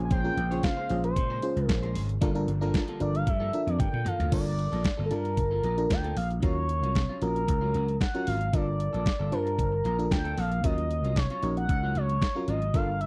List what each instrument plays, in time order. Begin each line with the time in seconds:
Already playing: slap bass A#1, analog synth pad C#3 G#3 A#3 F4 C5, fm electric piano C#4 F4 G#4 C5
0.05 analog synth lead G#5
0.10 clean electric guitar C#4 G#4 C5, analog synth lead G5, kick, closed hi-hat
0.24 fm electric piano C#4 F4 G#4 A#4, muted clean electric guitar stroke
0.37 slap bass A#1, muted clean electric guitar stroke, closed hi-hat
0.51 fm electric piano C#4 F4 G#4 C5, clean electric guitar C#4 G#4 C#5, closed hi-hat
0.63 analog synth lead F5, muted clean electric guitar stroke, kick, snare, closed hi-hat
0.77 clean electric guitar C#4 G#4 C5
0.90 slap bass A#1, fm electric piano C#4 F4 G#4 C5, muted clean electric guitar stroke, closed hi-hat
1.04 analog synth lead C5, muted clean electric guitar stroke, closed hi-hat
1.16 slap bass A#2, muted clean electric guitar stroke, kick, closed hi-hat
1.30 clean electric guitar C#4 G#4 C5
1.42 fm electric piano C#4 F4 G#4 C5, muted clean electric guitar stroke, closed hi-hat
1.56 slap bass C#2, muted clean electric guitar stroke, closed hi-hat
1.66 slap bass A#1, analog synth lead A#4, muted clean electric guitar stroke, kick, snare, closed hi-hat
1.83 clean electric guitar C#4 G#4 C5, closed hi-hat
1.95 slap bass G#1, clean electric guitar C#4 G#4 C5, open hi-hat
2.09 muted clean electric guitar stroke, closed hi-hat
2.21 slap bass G1, analog synth pad D3 F3 G3, clean electric guitar A#3 F4 A4, fm electric piano D4 F4 A4 A#4, kick, closed hi-hat
2.35 fm electric piano D4 F4 A4 A#4, muted clean electric guitar stroke, closed hi-hat
2.48 slap bass G1, muted clean electric guitar stroke, closed hi-hat
2.61 clean electric guitar A#3 F4 A#4, fm electric piano D4 F4 A4 A#4, closed hi-hat
2.74 muted clean electric guitar stroke, kick, snare, closed hi-hat
2.88 clean electric guitar A#3 F4 A4, closed hi-hat
3.00 slap bass G1, fm electric piano D4 F4 A4 A#4, analog synth lead D5, muted clean electric guitar stroke, closed hi-hat
3.14 analog synth lead F5, muted clean electric guitar stroke, closed hi-hat
3.27 slap bass G2, analog synth lead E5, muted clean electric guitar stroke, kick, closed hi-hat
3.40 clean electric guitar A#3 F4 A4
3.52 fm electric piano D4 F4 A4 A#4, muted clean electric guitar stroke, closed hi-hat
3.67 slap bass F2, analog synth lead D5, muted clean electric guitar stroke, closed hi-hat
3.79 slap bass G2, analog synth lead G5, muted clean electric guitar stroke, kick, closed hi-hat, high tom
3.93 slap bass A#2, muted clean electric guitar stroke, mid tom
4.05 clean electric guitar A#3 F4 A4, analog synth lead F5, closed hi-hat, mid tom
4.19 slap bass D2, clean electric guitar A#3 F4 A4, closed hi-hat, floor tom
4.31 slap bass G1, clean electric guitar A#3 F4 A4, fm electric piano D4 F4 A4 A#4, analog synth lead D5, kick, closed hi-hat, crash
4.45 muted clean electric guitar stroke
4.58 muted clean electric guitar stroke, closed hi-hat
4.72 slap bass A#1, clean electric guitar A#3 F4 A4, closed hi-hat
4.84 muted clean electric guitar stroke, kick, snare, closed hi-hat
4.97 slap bass G1, clean electric guitar A#3 F4 A4
5.06 analog synth lead A4
5.11 slap bass G2, fm electric piano D4 F4 A#4 A5, analog synth lead A#4, muted clean electric guitar stroke, closed hi-hat
5.25 muted clean electric guitar stroke, closed hi-hat
5.37 slap bass G1, muted clean electric guitar stroke, kick, closed hi-hat
5.51 clean electric guitar A#3 F4 A4
5.63 slap bass A#1, clean electric guitar A#3 F4 A#4, closed hi-hat
5.77 fm electric piano D4 F4 A4 A#4, muted clean electric guitar stroke, closed hi-hat
5.90 slap bass D2, analog synth lead G5, muted clean electric guitar stroke, kick, snare, closed hi-hat
6.04 clean electric guitar A#3 F4 A4, closed hi-hat
6.16 slap bass A#1, analog synth lead F5, muted clean electric guitar stroke, open hi-hat
6.30 muted clean electric guitar stroke, closed hi-hat
6.42 slap bass D#2, clean electric guitar F#3 C#4 F4, fm electric piano C#4 F4 F#4 A#4, analog synth lead C#5, kick, closed hi-hat
6.57 muted clean electric guitar stroke
6.69 muted clean electric guitar stroke, closed hi-hat
6.83 slap bass C2, clean electric guitar F#3 C#4 F4, closed hi-hat
6.95 muted clean electric guitar stroke, kick, snare, closed hi-hat
7.09 clean electric guitar F#3 C#4 F4
7.21 slap bass A#1, fm electric piano C#4 F4 F#4 A#4, analog synth lead A#4, muted clean electric guitar stroke, closed hi-hat
7.35 muted clean electric guitar stroke, closed hi-hat
7.48 slap bass C#2, muted clean electric guitar stroke, kick, closed hi-hat
7.61 clean electric guitar F#3 C#4 F4
7.74 slap bass C#2, clean electric guitar F#3 C#4 F#4, closed hi-hat
7.88 muted clean electric guitar stroke, closed hi-hat
8.00 analog synth lead F#5, muted clean electric guitar stroke, kick, snare, closed hi-hat
8.14 clean electric guitar F#3 C#4 F4, fm electric piano C#4 F4 F#4 A#4, closed hi-hat
8.27 slap bass G#1, clean electric guitar F#3 C#4 F4, analog synth lead F5, open hi-hat
8.41 muted clean electric guitar stroke, closed hi-hat
8.53 slap bass G1, clean electric guitar A#3 F4 A4, fm electric piano D4 F4 A4 A#4, analog synth lead D5, kick, closed hi-hat
8.67 muted clean electric guitar stroke
8.79 muted clean electric guitar stroke, closed hi-hat
8.93 slap bass A#1, clean electric guitar A#3 F4 A4, closed hi-hat
9.05 muted clean electric guitar stroke, kick, snare, closed hi-hat
9.19 slap bass G1, clean electric guitar A#3 F4 A4
9.32 slap bass G2, fm electric piano D4 F4 C5 A5, analog synth lead A#4, muted clean electric guitar stroke, closed hi-hat
9.46 muted clean electric guitar stroke, closed hi-hat
9.59 slap bass G1, kick, closed hi-hat
9.72 muted clean electric guitar stroke
9.84 slap bass A#1, clean electric guitar A#3 F4 A#4, closed hi-hat
9.99 fm electric piano D4 F4 A4 A#4, muted clean electric guitar stroke, closed hi-hat
10.11 slap bass D2, analog synth lead G5, muted clean electric guitar stroke, kick, snare, closed hi-hat
10.24 clean electric guitar A#3 F4 A4, closed hi-hat
10.37 slap bass A#1, clean electric guitar A#3 F4 A4, analog synth lead F5, open hi-hat
10.52 muted clean electric guitar stroke, closed hi-hat
10.64 slap bass D#2, clean electric guitar F#3 C#4 F4, fm electric piano C#4 F4 F#4 A#4, analog synth lead D#5, kick, closed hi-hat
10.78 muted clean electric guitar stroke, closed hi-hat
10.90 muted clean electric guitar stroke, closed hi-hat
11.04 slap bass C2, clean electric guitar F#3 C#4 F4, closed hi-hat
11.16 analog synth lead C#5, muted clean electric guitar stroke, kick, snare, closed hi-hat
11.30 clean electric guitar F#3 C#4 F4, closed hi-hat
11.42 slap bass A#1, fm electric piano C#4 D#4 F#4 A#4, muted clean electric guitar stroke, closed hi-hat
11.57 analog synth lead F#5, muted clean electric guitar stroke, closed hi-hat
11.69 slap bass C#2, muted clean electric guitar stroke, kick, closed hi-hat
11.83 clean electric guitar F#3 C#4 F4
11.95 slap bass C#2, clean electric guitar F#3 C#4 F#4, analog synth lead C#5, closed hi-hat
12.09 muted clean electric guitar stroke, closed hi-hat
12.22 muted clean electric guitar stroke, kick, snare, closed hi-hat
12.35 clean electric guitar F#3 C#4 F4, fm electric piano C#4 F4 F#4 A#4
12.48 slap bass G#1, clean electric guitar F#3 C#4 F4, analog synth lead D#5, closed hi-hat
12.62 muted clean electric guitar stroke, closed hi-hat
12.74 slap bass G1, clean electric guitar A#3 F4 A4, fm electric piano D4 F4 A4 A#4, analog synth lead F5, kick, closed hi-hat
12.88 muted clean electric guitar stroke
13.00 analog synth lead E5, muted clean electric guitar stroke, closed hi-hat